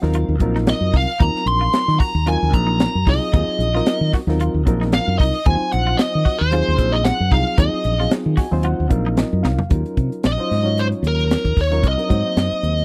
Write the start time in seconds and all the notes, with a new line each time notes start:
0.02 D#2 F#3 C4 D#4 F4 A#4, snare
0.13 F4, closed hi-hat
0.28 D#2
0.40 A#1 F#3 C4 D#4 F4 A#4, kick, closed hi-hat
0.55 D#4, snare
0.67 D#5, snare, closed hi-hat
0.81 F#2
0.93 C2 D#4 F5, kick, open hi-hat
1.20 D#2 F#3 C4 D#4 F4 A#4 A#5, kick, closed hi-hat
1.35 snare
1.46 A#1 C6, closed hi-hat
1.61 F4
1.73 snare, closed hi-hat
1.88 D#3, snare
2.00 F#4 A#5, muted fingered electric bass stroke, kick, open hi-hat
2.15 D#2
2.26 F#3 C4 D#4 F4 A#4 G#5, closed hi-hat
2.43 D#2
2.53 A#1 A#5, kick, closed hi-hat
2.67 D#4
2.80 snare, closed hi-hat
2.95 F#2
3.06 C2 F#3 C4 D#4 F4 G#4 D#5, kick, open hi-hat
3.32 D#2 F#3 C4 D#4 F4 G#4, kick, closed hi-hat
3.59 A#1, closed hi-hat
3.74 F#3 C4 D#4 F4 A#4, snare
3.86 snare, closed hi-hat
4.01 D#3
4.13 F#4, kick, snare, open hi-hat
4.27 D#2 F#3 C4 D#4 F4 A#4, snare
4.40 F4, closed hi-hat
4.54 D#2
4.66 A#1 F#3 C4 D#4 F4 A#4, kick, closed hi-hat
4.81 D#4, snare
4.92 F5, snare, closed hi-hat
5.08 F#2
5.18 C2 D#4 D#5, kick, open hi-hat
5.46 D#2 F#3 C4 D#4 F4 C5 G#5, kick, closed hi-hat
5.60 muted fingered electric bass stroke
5.72 A#1 F#5, closed hi-hat
5.87 F4
5.97 D#5, snare, closed hi-hat
6.15 D#3
6.25 F#4, kick, open hi-hat
6.39 D#2 C5
6.51 F#3 C4 D#4 F4 G#4, closed hi-hat
6.68 D#2
6.78 A#1, kick, closed hi-hat
6.92 D#4 D#5
7.04 F#5, snare, closed hi-hat
7.20 F#2
7.31 C2 F#3 C4 D#4 F4 G#4 F5, kick, open hi-hat
7.58 D#2 F#3 C4 D#4 F4 G#4 D#5, kick, closed hi-hat
7.84 A#1, closed hi-hat
7.98 F#3 C4 D#4 F4 G#4, snare
8.11 snare, closed hi-hat
8.26 D#3
8.37 F#4 G#5, muted fingered electric bass stroke, kick, snare, open hi-hat
8.51 D#2 F#3 C4 D#4 F4 C5
8.63 F4 F#5, closed hi-hat
8.80 D#2
8.89 A#1 F#3 C4 D#4 F4 A#4 F5, kick, closed hi-hat
9.06 D#4
9.17 D#5, snare, closed hi-hat
9.33 F#2
9.43 C2 D#4 F5, snare
9.59 floor tom
9.69 D#2 F#3 C#4 D#4 F4 A#4, kick, closed hi-hat
9.86 closed hi-hat
9.97 C3, kick, closed hi-hat
10.12 closed hi-hat
10.23 A#1 D#5, snare, closed hi-hat
10.38 F#3 C#4 D#4 F4 C5, closed hi-hat
10.51 G#2, snare, open hi-hat
10.63 F#3 C#4 D#4 F4 C#5, closed hi-hat
10.78 C5, closed hi-hat
10.92 closed hi-hat
11.03 D#2, closed hi-hat
11.07 A#4
11.19 closed hi-hat
11.31 snare, closed hi-hat
11.44 D#2, kick, closed hi-hat
11.56 D#2, kick, open hi-hat
11.61 C#5
11.70 F#3 C#4 D#4 F4 A#4, snare, closed hi-hat
11.84 C2, kick, closed hi-hat
11.88 D#5
11.97 F#3 C4 D4 D#4 A#4, closed hi-hat
12.09 G#2 F#3 A#3 C4 D#4 C5, kick, closed hi-hat
12.37 F#2, snare, closed hi-hat
12.51 muted fingered electric bass stroke, closed hi-hat
12.63 D#2, closed hi-hat
12.78 closed hi-hat